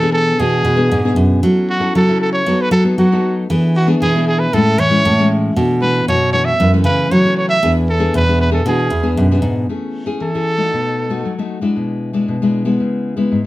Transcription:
Already playing: nylon-string guitar B2 E3, trumpet A4
0.02 nylon-string guitar B3 D4 G#4
0.12 trumpet A4
0.39 nylon-string guitar B2 E3 B3 D4 G#4, trumpet G#4
0.65 nylon-string guitar B2
0.76 nylon-string guitar B3 D4 G#4
0.91 nylon-string guitar G#2 B2
1.05 nylon-string guitar B3 D4 G#4
1.16 nylon-string guitar F#2
1.43 nylon-string guitar F#3 C#4 E4 A4
1.70 trumpet F#4
1.80 nylon-string guitar C#4 E4 A4
1.95 nylon-string guitar C#3 F#3, trumpet A4
2.08 nylon-string guitar C#4 E4 A4
2.21 trumpet A4
2.33 trumpet C#5
2.46 nylon-string guitar F#3 B3 D#4 A4
2.61 trumpet B4
2.71 nylon-string guitar F#3, trumpet A4
2.84 nylon-string guitar B3 D#4 A4
2.98 nylon-string guitar F#3, trumpet F#4
3.12 nylon-string guitar B3 D#4 A4
3.50 nylon-string guitar E3 B3 D4 G#4
3.76 trumpet F#4
3.87 nylon-string guitar B3 D4 G#4
4.02 nylon-string guitar B2 E3, trumpet G#4
4.15 nylon-string guitar B3 D4 G#4
4.27 trumpet G#4
4.39 trumpet B4
4.53 nylon-string guitar A2 G#3 C#4 E4, trumpet A4
4.78 nylon-string guitar E3, trumpet C#5
4.90 nylon-string guitar G#3 C#4 E4
5.05 nylon-string guitar A2 E3
5.19 nylon-string guitar G#3 C#4 E4
5.56 nylon-string guitar B2 E3 A3 D4
5.81 nylon-string guitar E3 A3 D4, trumpet B4
6.08 nylon-string guitar F#2 B2, trumpet C#5
6.32 nylon-string guitar E3 A3 D4, trumpet C#5
6.45 trumpet E5
6.59 nylon-string guitar F#2 E3 A3 C#4
6.73 nylon-string guitar E3 A3 C#4
6.84 nylon-string guitar C#3, trumpet B4
7.11 nylon-string guitar C#3 F#3, trumpet C#5
7.25 nylon-string guitar E3 A3 C#4
7.37 trumpet C#5
7.49 trumpet E5
7.63 nylon-string guitar E2 E3 B3 D4 G#4
7.89 trumpet A4
7.99 nylon-string guitar B3 D4 G#4
8.14 nylon-string guitar E2 B2, trumpet B4
8.28 nylon-string guitar B3 D4 G#4
8.41 trumpet B4
8.51 nylon-string guitar B3 D4 G#4, trumpet A4
8.66 nylon-string guitar B2 E3 B3 D4 G#4, trumpet G#4
8.90 nylon-string guitar E2
9.03 nylon-string guitar B3 D4 G#4
9.17 nylon-string guitar F#2 B2
9.31 nylon-string guitar B3 D4 G#4
9.42 nylon-string guitar G#2
9.69 nylon-string guitar A3 C#4 E4 G#4
10.06 nylon-string guitar C#4 E4 G#4
10.21 nylon-string guitar E3, trumpet A4
10.34 nylon-string guitar C#4 E4 G#4
10.58 nylon-string guitar A3 D#4 F#4
10.73 nylon-string guitar B2
11.10 nylon-string guitar A3 D#4 F#4
11.25 nylon-string guitar F#3
11.39 nylon-string guitar A3 D#4 F#4
11.62 nylon-string guitar G#3 D4 E4
11.76 nylon-string guitar B2
12.13 nylon-string guitar G#3 D4 E4
12.28 nylon-string guitar B2
12.42 nylon-string guitar G#3 D4 E4
12.65 nylon-string guitar G#3 B3 E4
12.80 nylon-string guitar C#3
13.17 nylon-string guitar G#3 B3 E4
13.32 nylon-string guitar G#2

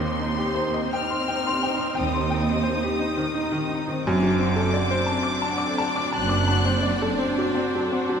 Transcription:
Already playing: double bass section D#2, cello section D#2, grand piano D#2, viola section C4 D#4, violin section C5 C6
0.00 grand piano D#3, violin section C4
0.17 violin section D#4, grand piano D#4
0.36 violin section G4, grand piano G4
0.55 violin section D#4, grand piano C5
0.74 violin section C4, grand piano D#5
0.93 violin section G3 F6, grand piano G5
1.10 violin section C4, grand piano C6
1.28 violin section D#4, grand piano G5
1.47 violin section G4, grand piano C6
1.63 violin section D#4, grand piano G5
1.78 grand piano C6
1.85 violin section C4
1.95 violin section G3 D#6, grand piano G5
1.99 double bass section D#2, cello section D#2
2.15 violin section C4, grand piano C6
2.30 violin section D#4, grand piano G5
2.50 violin section G4, grand piano D#5
2.63 grand piano C5
2.68 violin section D#4
2.83 violin section C4, grand piano G4
2.99 violin section G3, grand piano D#4
3.17 grand piano D#3, violin section C4
3.34 grand piano D#4, violin section D#4
3.52 grand piano D#3
3.57 violin section G4
3.69 grand piano D#4
3.74 violin section D#4
3.88 grand piano D#3, violin section C4
4.06 double bass section F#1, cello section F#2, grand piano F#2, viola section C4 D4, violin section C4 D6
4.10 violin section D5
4.23 grand piano F#3, violin section D4
4.39 grand piano C4, violin section F#4
4.56 grand piano A4
4.60 violin section A4
4.74 violin section F#4, grand piano D5
4.91 violin section D4, grand piano C5
5.07 grand piano A5
5.11 violin section C4
5.23 grand piano D6
5.28 violin section D4
5.42 grand piano A5
5.47 violin section F#4
5.58 grand piano D6
5.66 violin section A4
5.78 violin section F#4, grand piano A5
5.96 violin section D4, grand piano D6
6.12 double bass section F#1, cello section F#2, grand piano A5, violin section F#6
6.17 violin section C4
6.29 violin section D4, grand piano D6
6.48 violin section F#4, grand piano A5
6.65 violin section A4, grand piano C5
6.83 violin section F#4, grand piano D5
7.02 violin section D4, grand piano A4
7.18 grand piano C4, violin section C4
7.37 grand piano F#3, violin section D4
7.54 grand piano C4, violin section F#4
7.74 grand piano F#3, violin section A4
7.92 grand piano C4, violin section F#4
8.09 grand piano F#3, violin section D4

